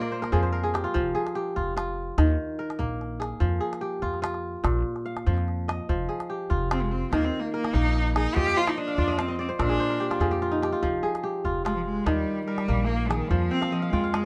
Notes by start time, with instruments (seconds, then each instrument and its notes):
Already playing: kora A#2 F4 A#4 C5 F5, cello A#3
0.01 kora D5
0.12 kora C5
0.22 kora A#4, calabash click
0.32 upright bass F2, kora F3 G#4, calabash thump, calabash click
0.43 kora C5
0.53 kora A#4, calabash click
0.63 kora G#4
0.74 kora G4, calabash click
0.84 kora F4
0.94 upright bass F1, kora F3, calabash thump
1.15 kora G#4
1.27 calabash click
1.35 kora G4
1.56 upright bass F1, kora F4, calabash thump
1.77 kora F4, calabash click
2.18 upright bass D#2, kora D#3, calabash thump, calabash click
2.59 kora A#4
2.70 calabash click
2.79 upright bass A#1, kora A#3, calabash thump, calabash click
3.01 calabash click
3.20 kora G#4, calabash click
3.40 upright bass F2, kora F3, calabash thump
3.61 kora G#4
3.73 calabash click
3.81 kora G4
4.02 upright bass F2, kora F4, calabash thump
4.14 calabash click
4.22 kora F4, calabash click
4.34 calabash click
4.64 upright bass A#1, kora A#2, calabash thump, calabash click
4.96 calabash click
5.06 kora F5
5.17 calabash click
5.27 upright bass F2, kora F3, calabash thump
5.38 calabash click
5.48 calabash click
5.68 kora D#5, calabash click
5.89 upright bass F1, kora F3, calabash thump
6.09 kora G#4
6.20 calabash click
6.30 kora G4
6.50 upright bass F1, kora F4, calabash thump
6.71 cello C4, kora F4, calabash click
6.82 cello G#3
6.92 cello C4
7.12 upright bass D#2, kora D#3, cello A#3, calabash thump, calabash click
7.25 cello C4
7.40 cello A#3
7.54 cello A#3, kora A#4
7.65 calabash click
7.74 upright bass A#1, kora A#3, cello D#4, calabash thump, calabash click
7.96 calabash click
8.15 cello D#4, kora G#4, calabash click
8.35 upright bass F2, kora F3 D#5, cello G4, calabash thump
8.47 kora F5
8.57 cello F4, kora C5
8.67 cello D#4, kora D5, calabash click
8.78 cello D4, kora D#5
8.88 kora F5
8.98 upright bass F2, kora F4 D5, calabash thump
9.08 kora D#5
9.18 cello C4, kora F5, calabash click
9.28 kora D#5
9.39 cello C4, kora D5
9.49 kora C5
9.59 upright bass A#1, kora A#2 A#4, cello D4, calabash thump, calabash click
9.69 kora G#4
9.80 kora C5
9.90 kora A#4
10.00 kora G4
10.10 kora F4, calabash click
10.20 upright bass F2, kora F3 G#4, calabash thump, calabash click
10.31 kora G4
10.42 kora F4, calabash click
10.51 kora D#4
10.62 kora G4, calabash click
10.72 kora F4
10.83 upright bass F1, kora F3, calabash thump
11.03 kora G#4
11.15 calabash click
11.23 kora G4
11.45 upright bass F1, kora F4, calabash thump
11.64 cello G#3, kora F4, calabash click
11.75 cello F3
11.85 cello G#3
12.05 upright bass D#2, kora D#3, cello G3, calabash thump, calabash click
12.46 cello G3, kora A#4
12.58 calabash click
12.68 upright bass A#1, kora A#3, calabash thump, calabash click
12.86 cello A#3
12.90 calabash click
13.08 cello D#3, kora G#4, calabash click
13.26 cello F3 G3
13.31 upright bass F2, kora F3, calabash thump
13.50 cello C4, kora G5
13.62 kora F5, calabash click
13.70 cello F3, kora D#5
13.82 kora F5
13.90 upright bass F2, cello G#3, kora F4 G5, calabash thump
14.04 kora F5
14.10 cello G#3, kora D#5, calabash click